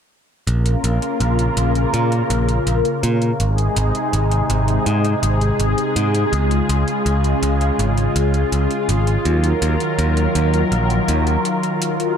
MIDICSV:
0, 0, Header, 1, 4, 480
1, 0, Start_track
1, 0, Key_signature, -5, "minor"
1, 0, Tempo, 731707
1, 311, Time_signature, 4, 2, 24, 8
1, 7986, End_track
2, 0, Start_track
2, 0, Title_t, "Analog synth pad"
2, 0, Program_c, 0, 89
2, 310, Note_on_c, 0, 49, 77
2, 310, Note_on_c, 0, 58, 72
2, 310, Note_on_c, 0, 65, 69
2, 310, Note_on_c, 0, 70, 84
2, 2211, Note_off_c, 0, 49, 0
2, 2211, Note_off_c, 0, 58, 0
2, 2211, Note_off_c, 0, 65, 0
2, 2211, Note_off_c, 0, 70, 0
2, 2231, Note_on_c, 0, 48, 75
2, 2231, Note_on_c, 0, 56, 67
2, 2232, Note_on_c, 0, 63, 69
2, 2232, Note_on_c, 0, 68, 85
2, 4132, Note_off_c, 0, 48, 0
2, 4132, Note_off_c, 0, 63, 0
2, 4151, Note_on_c, 0, 49, 77
2, 4152, Note_on_c, 0, 65, 72
2, 6045, Note_off_c, 0, 56, 0
2, 6045, Note_off_c, 0, 68, 0
2, 6052, Note_off_c, 0, 49, 0
2, 6071, Note_on_c, 0, 51, 74
2, 6072, Note_on_c, 0, 54, 74
2, 6072, Note_on_c, 0, 70, 83
2, 7965, Note_off_c, 0, 65, 0
2, 7972, Note_off_c, 0, 51, 0
2, 7972, Note_off_c, 0, 54, 0
2, 7972, Note_off_c, 0, 70, 0
2, 7986, End_track
3, 0, Start_track
3, 0, Title_t, "Picked electric bass"
3, 0, Program_c, 1, 34
3, 310, Note_on_c, 1, 34, 93
3, 490, Note_off_c, 1, 34, 0
3, 551, Note_on_c, 1, 34, 82
3, 640, Note_off_c, 1, 34, 0
3, 790, Note_on_c, 1, 34, 96
3, 970, Note_off_c, 1, 34, 0
3, 1030, Note_on_c, 1, 34, 90
3, 1209, Note_off_c, 1, 34, 0
3, 1270, Note_on_c, 1, 46, 91
3, 1450, Note_off_c, 1, 46, 0
3, 1510, Note_on_c, 1, 34, 95
3, 1689, Note_off_c, 1, 34, 0
3, 1749, Note_on_c, 1, 34, 78
3, 1840, Note_off_c, 1, 34, 0
3, 1989, Note_on_c, 1, 46, 82
3, 2169, Note_off_c, 1, 46, 0
3, 2229, Note_on_c, 1, 32, 93
3, 2409, Note_off_c, 1, 32, 0
3, 2471, Note_on_c, 1, 32, 83
3, 2560, Note_off_c, 1, 32, 0
3, 2711, Note_on_c, 1, 32, 95
3, 2890, Note_off_c, 1, 32, 0
3, 2951, Note_on_c, 1, 32, 88
3, 3130, Note_off_c, 1, 32, 0
3, 3190, Note_on_c, 1, 44, 90
3, 3369, Note_off_c, 1, 44, 0
3, 3430, Note_on_c, 1, 32, 95
3, 3610, Note_off_c, 1, 32, 0
3, 3669, Note_on_c, 1, 32, 80
3, 3760, Note_off_c, 1, 32, 0
3, 3910, Note_on_c, 1, 44, 78
3, 4090, Note_off_c, 1, 44, 0
3, 4150, Note_on_c, 1, 37, 95
3, 4329, Note_off_c, 1, 37, 0
3, 4390, Note_on_c, 1, 37, 85
3, 4480, Note_off_c, 1, 37, 0
3, 4630, Note_on_c, 1, 37, 94
3, 4810, Note_off_c, 1, 37, 0
3, 4871, Note_on_c, 1, 37, 91
3, 5050, Note_off_c, 1, 37, 0
3, 5111, Note_on_c, 1, 32, 91
3, 5290, Note_off_c, 1, 32, 0
3, 5351, Note_on_c, 1, 37, 96
3, 5530, Note_off_c, 1, 37, 0
3, 5591, Note_on_c, 1, 37, 81
3, 5680, Note_off_c, 1, 37, 0
3, 5831, Note_on_c, 1, 32, 83
3, 6010, Note_off_c, 1, 32, 0
3, 6071, Note_on_c, 1, 39, 95
3, 6250, Note_off_c, 1, 39, 0
3, 6311, Note_on_c, 1, 39, 86
3, 6400, Note_off_c, 1, 39, 0
3, 6550, Note_on_c, 1, 39, 97
3, 6730, Note_off_c, 1, 39, 0
3, 6790, Note_on_c, 1, 39, 92
3, 6970, Note_off_c, 1, 39, 0
3, 7031, Note_on_c, 1, 34, 90
3, 7210, Note_off_c, 1, 34, 0
3, 7271, Note_on_c, 1, 39, 97
3, 7450, Note_off_c, 1, 39, 0
3, 7986, End_track
4, 0, Start_track
4, 0, Title_t, "Drums"
4, 311, Note_on_c, 9, 42, 65
4, 376, Note_off_c, 9, 42, 0
4, 431, Note_on_c, 9, 42, 37
4, 497, Note_off_c, 9, 42, 0
4, 551, Note_on_c, 9, 42, 89
4, 616, Note_off_c, 9, 42, 0
4, 671, Note_on_c, 9, 42, 38
4, 737, Note_off_c, 9, 42, 0
4, 790, Note_on_c, 9, 42, 61
4, 856, Note_off_c, 9, 42, 0
4, 911, Note_on_c, 9, 42, 39
4, 977, Note_off_c, 9, 42, 0
4, 1030, Note_on_c, 9, 42, 86
4, 1095, Note_off_c, 9, 42, 0
4, 1151, Note_on_c, 9, 42, 39
4, 1216, Note_off_c, 9, 42, 0
4, 1270, Note_on_c, 9, 42, 64
4, 1336, Note_off_c, 9, 42, 0
4, 1391, Note_on_c, 9, 42, 41
4, 1456, Note_off_c, 9, 42, 0
4, 1510, Note_on_c, 9, 42, 90
4, 1576, Note_off_c, 9, 42, 0
4, 1631, Note_on_c, 9, 42, 38
4, 1696, Note_off_c, 9, 42, 0
4, 1750, Note_on_c, 9, 42, 66
4, 1816, Note_off_c, 9, 42, 0
4, 1870, Note_on_c, 9, 42, 39
4, 1936, Note_off_c, 9, 42, 0
4, 1990, Note_on_c, 9, 42, 93
4, 2056, Note_off_c, 9, 42, 0
4, 2110, Note_on_c, 9, 42, 40
4, 2176, Note_off_c, 9, 42, 0
4, 2230, Note_on_c, 9, 42, 65
4, 2295, Note_off_c, 9, 42, 0
4, 2350, Note_on_c, 9, 42, 40
4, 2416, Note_off_c, 9, 42, 0
4, 2470, Note_on_c, 9, 42, 95
4, 2535, Note_off_c, 9, 42, 0
4, 2590, Note_on_c, 9, 42, 38
4, 2656, Note_off_c, 9, 42, 0
4, 2711, Note_on_c, 9, 42, 66
4, 2777, Note_off_c, 9, 42, 0
4, 2831, Note_on_c, 9, 42, 40
4, 2896, Note_off_c, 9, 42, 0
4, 2950, Note_on_c, 9, 42, 82
4, 3016, Note_off_c, 9, 42, 0
4, 3070, Note_on_c, 9, 42, 38
4, 3136, Note_off_c, 9, 42, 0
4, 3190, Note_on_c, 9, 42, 65
4, 3256, Note_off_c, 9, 42, 0
4, 3310, Note_on_c, 9, 42, 41
4, 3376, Note_off_c, 9, 42, 0
4, 3430, Note_on_c, 9, 42, 92
4, 3496, Note_off_c, 9, 42, 0
4, 3552, Note_on_c, 9, 42, 37
4, 3617, Note_off_c, 9, 42, 0
4, 3671, Note_on_c, 9, 42, 65
4, 3737, Note_off_c, 9, 42, 0
4, 3791, Note_on_c, 9, 42, 40
4, 3857, Note_off_c, 9, 42, 0
4, 3911, Note_on_c, 9, 42, 96
4, 3977, Note_off_c, 9, 42, 0
4, 4032, Note_on_c, 9, 42, 42
4, 4097, Note_off_c, 9, 42, 0
4, 4151, Note_on_c, 9, 42, 62
4, 4217, Note_off_c, 9, 42, 0
4, 4271, Note_on_c, 9, 42, 39
4, 4337, Note_off_c, 9, 42, 0
4, 4391, Note_on_c, 9, 42, 90
4, 4457, Note_off_c, 9, 42, 0
4, 4511, Note_on_c, 9, 42, 39
4, 4577, Note_off_c, 9, 42, 0
4, 4632, Note_on_c, 9, 42, 66
4, 4697, Note_off_c, 9, 42, 0
4, 4752, Note_on_c, 9, 42, 41
4, 4817, Note_off_c, 9, 42, 0
4, 4872, Note_on_c, 9, 42, 84
4, 4938, Note_off_c, 9, 42, 0
4, 4992, Note_on_c, 9, 42, 38
4, 5058, Note_off_c, 9, 42, 0
4, 5112, Note_on_c, 9, 42, 67
4, 5178, Note_off_c, 9, 42, 0
4, 5232, Note_on_c, 9, 42, 40
4, 5297, Note_off_c, 9, 42, 0
4, 5352, Note_on_c, 9, 42, 90
4, 5417, Note_off_c, 9, 42, 0
4, 5471, Note_on_c, 9, 42, 36
4, 5537, Note_off_c, 9, 42, 0
4, 5592, Note_on_c, 9, 42, 66
4, 5657, Note_off_c, 9, 42, 0
4, 5711, Note_on_c, 9, 42, 38
4, 5777, Note_off_c, 9, 42, 0
4, 5831, Note_on_c, 9, 42, 93
4, 5897, Note_off_c, 9, 42, 0
4, 5951, Note_on_c, 9, 42, 40
4, 6017, Note_off_c, 9, 42, 0
4, 6071, Note_on_c, 9, 42, 60
4, 6136, Note_off_c, 9, 42, 0
4, 6190, Note_on_c, 9, 42, 39
4, 6256, Note_off_c, 9, 42, 0
4, 6310, Note_on_c, 9, 42, 89
4, 6376, Note_off_c, 9, 42, 0
4, 6431, Note_on_c, 9, 42, 37
4, 6497, Note_off_c, 9, 42, 0
4, 6551, Note_on_c, 9, 42, 64
4, 6616, Note_off_c, 9, 42, 0
4, 6671, Note_on_c, 9, 42, 37
4, 6737, Note_off_c, 9, 42, 0
4, 6791, Note_on_c, 9, 42, 82
4, 6857, Note_off_c, 9, 42, 0
4, 6912, Note_on_c, 9, 42, 37
4, 6977, Note_off_c, 9, 42, 0
4, 7032, Note_on_c, 9, 42, 62
4, 7097, Note_off_c, 9, 42, 0
4, 7151, Note_on_c, 9, 42, 38
4, 7217, Note_off_c, 9, 42, 0
4, 7271, Note_on_c, 9, 42, 84
4, 7337, Note_off_c, 9, 42, 0
4, 7392, Note_on_c, 9, 42, 35
4, 7458, Note_off_c, 9, 42, 0
4, 7512, Note_on_c, 9, 42, 61
4, 7578, Note_off_c, 9, 42, 0
4, 7632, Note_on_c, 9, 42, 38
4, 7698, Note_off_c, 9, 42, 0
4, 7751, Note_on_c, 9, 42, 89
4, 7817, Note_off_c, 9, 42, 0
4, 7871, Note_on_c, 9, 42, 38
4, 7937, Note_off_c, 9, 42, 0
4, 7986, End_track
0, 0, End_of_file